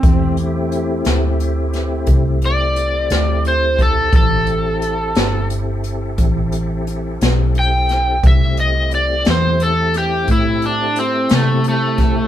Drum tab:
HH |xxxxxxxxxxxx|xxxxxxxxxxxx|xxxxxxxxxxxx|
SD |---o-o---o--|---o-----o-o|---o-o---o-o|
BD |o-----o----o|o-----o-----|o-----o----o|